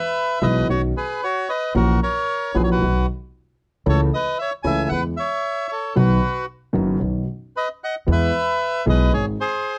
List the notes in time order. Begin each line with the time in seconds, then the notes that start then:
Already playing: B4 E5
0.42 B1 B2 E3 G#3 B3 F#4 B4 D#5
0.69 B1 B2 D#3 B3 C#4 F#4 C#5
0.97 G#4 B4
1.23 F#4 C#5
1.49 B4 D#5
1.74 A#1 A#2 E3 A#3 C#4 F#4 A#4
2.03 A#4 C#5
2.54 A#1 A#2 E3 A#3 C#4 F#4 G#4 B4
2.64 C#5
2.71 F#4 B4
2.81 B1 B2 D#3 F#3 B3 F#4
3.86 C#2 C#3 E3 A3 C#4 A4 C#5
4.14 B4 D#5
4.39 C#5 E5
4.63 C#2 C#3 E3 A3 C#4 A4 E5 G#5
4.89 E2 E3 G#3 B3 G#4 B4 F#5
5.17 C#5 E5
5.69 A4 C#5
5.96 B1 B2 D#3 F#3 B3 F#4 B4
6.73 F#1 F#2 D#3 F#3 B3 F#4
6.99 B1 B2 D#3 F#3 B3 F#4
7.56 B4 D#5
7.84 D#5 F#5
8.07 E2 E3 G#3 B3 G#4
8.12 B4 E5
8.86 B1 B2 E3 G#3 B3 G#4 B4 D#5
9.12 G#1 G#2 D#3 G#3 C4 G#4 C#5
9.40 G#4 C5